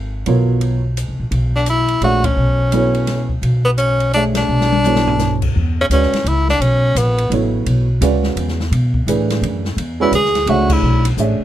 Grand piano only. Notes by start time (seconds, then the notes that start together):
0.26 F#3 B3 F4 A#4 C#5
2.02 A3 D4 G#4 C#5 E5
2.72 F#3 B3 E4 A4 C#5
4.15 A3 D4 G#4 C#5 E5
4.86 F#3 B3 E4 A4 C#5
5.91 G#3 C#4 F#4 B4 D5
7.32 F#3 B3 E4 A4 C#5
8.02 C#3 G#3 F#4 B4 D5
9.08 E3 A3 D4 G#4 B4
10.00 G#3 C#4 F#4 B4 D5
10.48 A3 D4 G#4 C#5 E5
11.18 A3 D4 G#4 C#5 E5